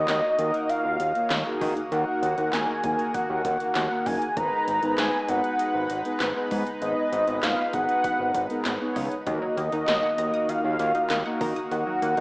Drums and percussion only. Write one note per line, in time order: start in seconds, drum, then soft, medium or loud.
0.08 snare loud
0.08 clap loud
0.08 closed hi-hat medium
0.39 closed hi-hat medium
0.54 closed hi-hat soft
0.69 closed hi-hat medium
1.00 closed hi-hat medium
1.15 closed hi-hat medium
1.30 snare loud
1.30 clap loud
1.30 closed hi-hat medium
1.61 kick loud
1.61 open hi-hat medium
1.77 closed hi-hat medium
1.92 closed hi-hat medium
2.23 closed hi-hat medium
2.38 closed hi-hat medium
2.53 snare loud
2.53 clap loud
2.53 closed hi-hat medium
2.84 kick loud
2.84 closed hi-hat medium
2.99 closed hi-hat soft
3.14 kick loud
3.14 closed hi-hat medium
3.45 kick medium
3.45 closed hi-hat medium
3.60 closed hi-hat medium
3.75 snare loud
3.75 clap loud
3.75 closed hi-hat medium
4.06 kick loud
4.06 open hi-hat medium
4.22 closed hi-hat medium
4.37 kick loud
4.37 closed hi-hat medium
4.68 closed hi-hat medium
4.83 closed hi-hat medium
4.98 snare loud
4.98 clap loud
4.98 closed hi-hat medium
5.28 closed hi-hat medium
5.44 closed hi-hat soft
5.59 closed hi-hat medium
5.90 closed hi-hat medium
6.05 closed hi-hat medium
6.20 snare loud
6.20 clap loud
6.20 closed hi-hat medium
6.51 kick loud
6.51 open hi-hat medium
6.67 closed hi-hat medium
6.82 closed hi-hat medium
7.13 closed hi-hat medium
7.27 closed hi-hat medium
7.43 snare loud
7.43 clap medium
7.43 closed hi-hat medium
7.73 kick medium
7.73 closed hi-hat medium
7.89 closed hi-hat soft
8.04 kick medium
8.04 closed hi-hat medium
8.34 kick medium
8.34 closed hi-hat medium
8.50 closed hi-hat medium
8.65 snare loud
8.65 clap loud
8.65 closed hi-hat medium
8.96 kick loud
8.96 open hi-hat medium
9.12 closed hi-hat medium
9.27 kick loud
9.27 closed hi-hat medium
9.57 closed hi-hat medium
9.72 closed hi-hat medium
9.88 snare loud
9.88 clap medium
9.88 closed hi-hat medium
10.18 closed hi-hat medium
10.34 closed hi-hat soft
10.49 closed hi-hat medium
10.79 closed hi-hat medium
10.95 closed hi-hat medium
11.10 snare loud
11.10 clap loud
11.10 closed hi-hat medium
11.41 kick loud
11.41 open hi-hat medium
11.56 closed hi-hat medium
11.71 closed hi-hat medium
12.02 closed hi-hat medium
12.17 closed hi-hat medium